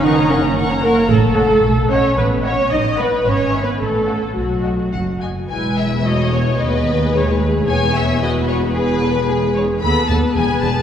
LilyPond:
<<
  \new Staff \with { instrumentName = "Violin section" } { \time 2/4 \key fis \mixolydian \tempo 4 = 111 cis'''16 ais''16 cis'''16 ais''16 cis'''16 ais''16 cis'''16 ais''16 | \key b \mixolydian r8 a''8 r8 fis''8 | r8 fis''8 r8 fis''8 | r8 gis''8 r8 fis''8 |
r8 fis''8 fis''8 gis''8 | gis''8 e''8 dis''8 cis''8 | b'4. r8 | gis''8 e''8 dis''8 cis''8 |
b'4. r8 | b''8 a''8 gis''8 a''8 | }
  \new Staff \with { instrumentName = "Violin section" } { \time 2/4 \key fis \mixolydian <ais' fis''>16 <cis'' ais''>16 <ais' fis''>16 <cis'' ais''>16 <ais' fis''>16 <cis'' ais''>16 <ais' fis''>16 <cis'' ais''>16 | \key b \mixolydian r8 <cis'' fis''>8 r8 <dis'' fis''>8 | r8 <dis'' fis''>8 r8 <dis'' fis''>8 | r8 e''8 r8 <cis'' fis''>8 |
r8 <dis'' fis''>8 r8 <dis'' fis''>8 | b'4 cis''4 | dis''4 cis''8 b'8 | cis''4 b'4 |
gis'8 a'8 gis'8 cis''8 | b'4 b'4 | }
  \new Staff \with { instrumentName = "Viola section" } { \time 2/4 \key fis \mixolydian << { dis'8 cis'8 r8 ais'8 | \key b \mixolydian a'4. cis''8 | b'8 cis''8 dis''8 b'8 | \tuplet 3/2 { cis''4 b'8 } a'4 |
fis'4. r8 | e'4 fis'4 | gis'2~ | gis'4 fis'4 |
gis'4 gis'4 | a'8 a'8 gis'8 gis'8 | } \\ { r2 | r2 | r2 | r2 |
r2 | gis4 a4 | b4 gis8 a8 | b4 b4~ |
b4 gis4 | b8 b8 b8 b8 | } >> }
  \new Staff \with { instrumentName = "Cello section" } { \clef bass \time 2/4 \key fis \mixolydian dis8 cis8 r8 ais8 | \key b \mixolydian a4. cis'8 | b8 cis'8 dis'8 b8 | \tuplet 3/2 { cis'4 b8 } a4 |
fis4. r8 | e,2 | dis,2 | e,2~ |
e,2 | dis,8 dis,8 e,8 e,8 | }
  \new Staff \with { instrumentName = "Double bass section" } { \clef bass \time 2/4 \key fis \mixolydian fis,,2 | \key b \mixolydian a,,4 b,,4 | a,,4 a,,4 | gis,,4 a,,4 |
b,,4 fis,,4 | e,,2 | dis,2 | e,,2~ |
e,,2 | dis,8 dis,8 e,,8 e,,8 | }
>>